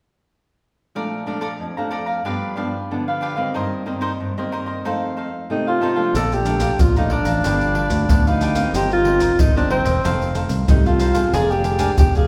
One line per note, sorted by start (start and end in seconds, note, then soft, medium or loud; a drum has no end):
0.95 1.57 A#2 medium
0.95 1.23 F3 soft
0.95 1.23 A3 soft
0.95 1.23 D4 soft
0.95 1.26 D5 medium
0.95 1.26 F5 medium
0.95 1.27 A#5 medium
1.26 1.71 F3 soft
1.26 1.71 A3 soft
1.26 1.71 D4 soft
1.26 1.40 A4 soft
1.26 1.41 D5 soft
1.26 1.41 F5 soft
1.26 1.41 A#5 soft
1.41 1.52 A4 medium
1.41 1.52 D5 medium
1.41 1.52 F5 medium
1.41 1.52 A#5 medium
1.60 2.22 F2 soft
1.77 2.21 F3 soft
1.77 2.21 A3 soft
1.77 2.21 D4 medium
1.77 1.90 D5 soft
1.77 1.91 F5 soft
1.77 1.91 A#5 soft
1.91 2.07 A4 medium
1.91 2.07 D5 medium
1.91 2.06 F5 medium
1.91 2.05 A#5 soft
2.06 2.23 D5 soft
2.06 2.23 F5 soft
2.06 2.23 A#5 soft
2.25 2.87 G2 medium
2.25 2.52 F3 soft
2.25 2.53 B3 soft
2.25 2.55 D4 medium
2.25 2.53 D4 soft
2.25 2.55 G4 medium
2.25 2.56 B4 medium
2.25 2.56 F5 medium
2.56 2.76 F3 soft
2.56 2.77 B3 soft
2.56 3.04 D4 soft
2.56 2.77 D4 medium
2.56 3.05 G4 soft
2.56 3.05 B4 soft
2.56 3.05 F5 soft
2.91 3.52 D3 medium
2.91 3.34 F3 soft
2.91 3.34 B3 soft
2.91 3.35 D4 medium
3.08 3.21 G4 soft
3.08 3.21 B4 soft
3.08 3.21 F5 soft
3.21 3.37 D4 medium
3.21 3.36 G4 medium
3.21 3.36 B4 medium
3.21 3.34 F5 medium
3.36 3.81 D#3 medium
3.36 3.82 A#3 soft
3.36 3.82 C4 medium
3.36 3.53 G4 soft
3.36 3.53 B4 soft
3.36 3.52 F5 soft
3.54 4.17 G2 medium
3.54 3.85 D#4 medium
3.54 3.85 A#4 medium
3.54 3.86 C5 medium
3.54 3.86 D#5 medium
3.86 4.30 D#3 soft
3.86 4.31 A#3 soft
3.86 4.31 C4 medium
3.86 4.00 D#4 soft
3.86 4.00 A#4 soft
3.86 4.00 C5 soft
3.86 4.01 D#5 soft
4.01 4.11 D#4 medium
4.01 4.12 A#4 medium
4.01 4.12 C5 medium
4.01 4.12 D#5 medium
4.20 4.82 G2 medium
4.37 4.80 D#3 medium
4.37 4.81 A#3 medium
4.37 4.81 C4 medium
4.37 4.51 A#4 soft
4.37 4.52 C5 soft
4.37 4.52 D#5 soft
4.52 4.67 D#4 medium
4.52 4.66 A#4 medium
4.52 4.66 C5 medium
4.52 4.65 D#5 medium
4.66 4.83 A#4 soft
4.66 4.83 C5 soft
4.66 4.82 D#5 soft
4.85 5.47 F2 medium
4.85 5.27 D#3 soft
4.85 5.27 A3 soft
4.85 5.27 C4 medium
4.85 5.15 D#4 medium
4.85 5.16 A4 medium
4.85 5.17 C5 medium
4.85 5.17 F5 medium
5.17 5.64 D#4 soft
5.17 5.65 A4 soft
5.17 5.65 C5 soft
5.17 5.65 F5 soft
5.50 6.12 C3 medium
5.50 5.77 D#3 soft
5.50 5.77 A3 medium
5.50 5.78 C4 medium
5.50 5.70 D#4 medium
5.67 6.15 F4 medium
5.67 5.81 A4 soft
5.67 5.82 C5 soft
5.67 5.81 F5 soft
5.80 5.91 D#3 soft
5.80 5.91 A3 soft
5.80 5.91 C4 soft
5.80 5.97 D#4 medium
5.80 5.96 A4 medium
5.80 5.95 C5 medium
5.80 5.94 F5 medium
5.95 6.41 F3 medium
5.95 6.41 A3 soft
5.95 6.41 D4 medium
5.95 6.13 A4 soft
5.95 6.12 C5 soft
5.95 6.12 F5 soft
6.15 6.70 A#1 medium
6.15 6.77 A#2 soft
6.15 6.35 A4 medium
6.15 6.45 D5 medium
6.15 6.45 F5 medium
6.15 6.46 A#5 medium
6.15 pandeiro medium
6.15 maracas medium
6.15 surdo medium
6.32 6.82 G4 medium
6.32 pandeiro soft
6.32 maracas soft
6.46 6.77 F3 soft
6.46 6.77 A3 soft
6.46 6.77 D4 medium
6.46 6.60 A4 soft
6.46 6.60 D5 soft
6.46 6.60 F5 soft
6.46 6.60 A#5 soft
6.46 pandeiro soft
6.46 maracas medium
6.60 6.71 A4 medium
6.60 6.71 D5 medium
6.60 6.72 F5 medium
6.60 6.72 A#5 medium
6.60 pandeiro medium
6.60 maracas medium
6.60 surdo soft
6.79 7.21 A#1 medium
6.79 7.41 F2 soft
6.79 6.96 F4 medium
6.79 pandeiro medium
6.79 maracas medium
6.79 surdo medium
6.96 7.40 F3 soft
6.96 7.40 A3 medium
6.96 7.40 D4 medium
6.96 7.13 D#4 medium
6.96 7.10 D5 soft
6.96 7.11 F5 soft
6.96 7.11 A#5 soft
6.96 pandeiro soft
6.96 maracas soft
7.10 8.09 D4 medium
7.10 7.26 A4 medium
7.10 7.26 D5 medium
7.10 7.25 F5 medium
7.10 7.24 A#5 medium
7.10 pandeiro soft
7.10 surdo soft
7.25 7.40 A1 medium
7.25 7.43 D5 soft
7.25 7.42 F5 soft
7.25 7.42 A#5 soft
7.25 pandeiro medium
7.25 maracas medium
7.25 surdo soft
7.44 7.86 G1 medium
7.44 8.06 G2 soft
7.44 7.86 F3 soft
7.44 7.86 B3 soft
7.44 7.74 D4 medium
7.44 7.87 D4 medium
7.44 7.75 G4 medium
7.44 7.76 B4 medium
7.44 7.76 F5 medium
7.44 pandeiro medium
7.44 maracas medium
7.44 surdo medium
7.61 pandeiro soft
7.61 maracas soft
7.75 8.24 D4 soft
7.75 8.24 G4 soft
7.75 8.24 B4 soft
7.75 8.24 F5 soft
7.75 pandeiro soft
7.90 8.05 D2 medium
7.90 pandeiro medium
7.90 maracas medium
7.90 surdo soft
8.09 8.64 D2 medium
8.09 8.53 F3 medium
8.09 8.53 B3 soft
8.09 8.53 D4 medium
8.09 8.29 D4 medium
8.09 pandeiro medium
8.09 maracas medium
8.09 surdo medium
8.27 8.77 D#4 medium
8.27 8.41 G4 soft
8.27 8.41 B4 soft
8.27 8.41 F5 soft
8.27 pandeiro soft
8.27 maracas soft
8.41 8.57 D4 medium
8.41 8.56 G4 medium
8.41 8.55 B4 medium
8.41 8.54 F5 medium
8.41 pandeiro soft
8.41 maracas medium
8.55 9.00 D#3 medium
8.55 9.00 A#3 medium
8.55 9.00 C4 medium
8.55 8.72 G4 soft
8.55 8.72 B4 soft
8.55 8.72 F5 soft
8.55 pandeiro medium
8.55 maracas medium
8.55 surdo soft
8.74 9.29 G1 medium
8.74 9.36 G2 soft
8.74 9.04 D#4 soft
8.74 8.91 G4 medium
8.74 9.05 A#4 medium
8.74 9.05 C5 medium
8.74 9.06 D#5 medium
8.74 pandeiro medium
8.74 maracas medium
8.74 surdo soft
8.91 9.41 F4 medium
8.91 pandeiro soft
8.91 maracas soft
9.04 9.36 D#3 soft
9.04 9.36 A#3 soft
9.04 9.36 C4 soft
9.04 9.20 D#4 soft
9.04 9.20 A#4 soft
9.04 9.20 C5 soft
9.04 9.20 D#5 medium
9.04 pandeiro soft
9.20 9.31 D#4 medium
9.20 9.31 A#4 medium
9.20 9.31 C5 medium
9.20 9.31 D#5 medium
9.20 pandeiro medium
9.20 maracas medium
9.20 surdo soft
9.39 9.80 G1 medium
9.39 10.01 G2 soft
9.39 9.56 D#4 medium
9.39 pandeiro medium
9.39 maracas medium
9.39 surdo medium
9.56 9.99 D#3 soft
9.56 9.99 A#3 soft
9.56 9.99 C4 medium
9.56 9.70 D4 medium
9.56 9.70 A#4 soft
9.56 9.70 C5 soft
9.56 9.70 D#5 soft
9.56 pandeiro soft
9.56 maracas soft
9.70 10.37 C4 medium
9.70 9.86 D#4 medium
9.70 9.85 A#4 medium
9.70 9.84 C5 medium
9.70 9.83 D#5 medium
9.70 pandeiro medium
9.84 10.00 E1 medium
9.84 10.02 A#4 soft
9.84 10.01 C5 soft
9.84 10.01 D#5 soft
9.84 pandeiro medium
9.84 maracas medium
9.84 surdo soft
10.04 10.45 F1 medium
10.04 10.65 F2 soft
10.04 10.63 D#3 soft
10.04 10.64 A3 soft
10.04 10.64 C4 soft
10.04 10.34 D#4 medium
10.04 10.34 A4 medium
10.04 10.35 C5 medium
10.04 10.35 F5 medium
10.04 pandeiro medium
10.04 maracas medium
10.04 surdo medium
10.22 pandeiro soft
10.22 maracas soft
10.35 10.83 D#4 soft
10.35 10.83 A4 soft
10.35 10.84 C5 soft
10.35 10.84 F5 soft
10.35 pandeiro soft
10.35 maracas medium
10.49 10.65 C2 medium
10.49 pandeiro medium
10.49 maracas medium
10.49 surdo soft
10.68 11.24 C2 medium
10.68 11.31 C3 medium
10.68 10.99 D#3 medium
10.68 11.00 A3 medium
10.68 11.00 C4 medium
10.68 10.88 D#4 medium
10.68 pandeiro medium
10.68 maracas medium
10.68 surdo medium
10.86 11.33 F4 medium
10.86 10.99 A4 soft
10.86 10.99 C5 soft
10.86 10.99 F5 soft
10.86 pandeiro soft
10.86 maracas soft
10.99 11.15 D#4 medium
10.99 11.14 A4 medium
10.99 11.13 C5 medium
10.99 11.12 F5 medium
10.99 pandeiro soft
10.99 maracas medium
11.14 11.60 A#3 medium
11.14 11.60 D4 medium
11.14 11.60 G#4 medium
11.14 11.31 A4 soft
11.14 11.31 C5 soft
11.14 11.30 F5 soft
11.14 pandeiro medium
11.14 maracas medium
11.14 surdo soft
11.33 11.88 F1 medium
11.33 11.96 F3 medium
11.33 11.63 G#4 medium
11.33 11.52 G#4 medium
11.33 11.64 A#4 medium
11.33 11.64 D5 medium
11.33 11.64 F5 medium
11.33 pandeiro medium
11.33 maracas medium
11.33 surdo soft
11.51 11.98 G4 medium
11.51 pandeiro soft
11.51 maracas soft
11.64 11.78 G#4 soft
11.64 11.78 A#4 soft
11.64 11.79 D5 soft
11.64 11.78 F5 soft
11.64 pandeiro soft
11.64 maracas medium
11.79 12.24 A#3 medium
11.79 12.24 D4 medium
11.79 11.90 G#4 medium
11.79 12.25 G#4 medium
11.79 11.90 A#4 medium
11.79 11.90 D5 medium
11.79 11.90 F5 medium
11.79 pandeiro medium
11.79 maracas medium
11.79 surdo soft
11.98 12.27 F1 medium
11.98 12.27 F3 soft
11.98 12.18 G4 medium
11.98 pandeiro medium
11.98 maracas medium
11.98 surdo medium
12.15 12.27 G#4 medium
12.15 12.27 A#4 soft
12.15 12.27 D5 soft
12.15 12.27 F5 soft
12.15 pandeiro soft
12.15 maracas soft